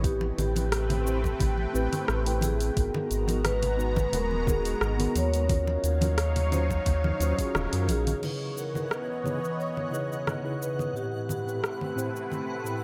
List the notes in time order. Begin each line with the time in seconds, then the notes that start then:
Already playing: A1
0.02 A3 C4 E4 G4 B4 G5, kick, open hi-hat, shaker
0.21 muted conga
0.38 A1 G4, open hi-hat, low conga, shaker
0.55 C4 E4 G4 B4, open hi-hat, high conga, shaker
0.72 cross-stick, open hi-hat, shaker
0.90 open hi-hat, low conga
1.05 C4 E4 G4 C5, shaker
1.24 kick, muted conga, shaker
1.40 A1, kick, open hi-hat, low conga, shaker
1.58 high conga
1.73 A1 C4 E4 G4 B4, shaker
1.93 open hi-hat, low conga, shaker
2.08 A1, cross-stick, shaker
2.25 C4 E4 B4 G5, open hi-hat
2.41 G#4, open hi-hat, high conga, low conga, shaker
2.60 open hi-hat, shaker
2.76 G#1 G#3 B3 D#4 F#4 A#4 A#5, kick, open hi-hat, shaker
2.94 muted conga, low conga
3.11 G#1, open hi-hat, shaker
3.27 B3 D#4 F#4 A#4, open hi-hat, high conga, shaker
3.45 B4, cross-stick, open hi-hat, low conga, shaker
3.63 open hi-hat, low conga
3.77 B3 D#4 F#4 B4, shaker
3.96 kick, muted conga, low conga, shaker
4.13 D#1 A#4, open hi-hat, low conga, shaker
4.31 high conga
4.42 A#4
4.46 B3 D#4 F#4 G#4 A#4, kick, low conga, shaker
4.65 open hi-hat, shaker
4.81 G#1, cross-stick, shaker
4.97 B3 D#4 F#4 A#4, open hi-hat, low conga
5.15 D#2 C#5, open hi-hat, high conga, shaker
5.34 open hi-hat, shaker
5.47 F#3 C#4 D#4 F4 F#4 A#4 C#5 F5, kick, open hi-hat, low conga, shaker
5.67 muted conga
5.84 D#2, open hi-hat, shaker
6.01 C#4 F4 F#4 A#4, open hi-hat, high conga, low conga, shaker
6.18 cross-stick, open hi-hat, shaker
6.36 open hi-hat, low conga
6.51 C#4 F4 F#4 C5, open hi-hat, low conga, shaker
6.70 kick, muted conga, shaker
6.86 D#2, kick, open hi-hat, low conga, shaker
7.04 high conga, low conga
7.20 D#2 C#4 F4 F#4 C5, open hi-hat, shaker
7.37 C#4 F4 F#4 G#4, kick, open hi-hat, shaker
7.55 D#1, cross-stick, low conga, shaker
7.71 F#2 C#4 F4 F#4 A#4, open hi-hat
7.88 A#1 G#4, open hi-hat, high conga, shaker
8.07 open hi-hat, low conga, shaker
8.21 C#3 E3 B3 D#4 E4 G#4 B4 C#5 D#5 F#5, crash, low conga, shaker
8.58 A#4, shaker
8.74 C#3 D#4 E4 G#4 B4, low conga, shaker
8.91 B4, cross-stick, shaker
9.23 C#3 D#4 E4 G#4 C#5, low conga, shaker
9.44 shaker
9.53 D#5
9.60 C#5, shaker
9.77 low conga
9.91 C#3 D#4 E4 G#4 B4, shaker
10.12 shaker
10.27 cross-stick, low conga, shaker
10.43 C#3 D#4 E4 G#4 B4
10.62 B4, shaker
10.79 low conga, shaker
10.93 A2 A3 C4 E4 G4 B4, shaker
11.29 G4, low conga, shaker
11.45 A2 C4 E4 G4 B4, shaker
11.64 cross-stick, shaker
11.81 low conga
11.95 A2 C4 E4 G4 C5, shaker
12.16 shaker
12.32 low conga, shaker
12.64 A2 C4 E4 G4 B4, shaker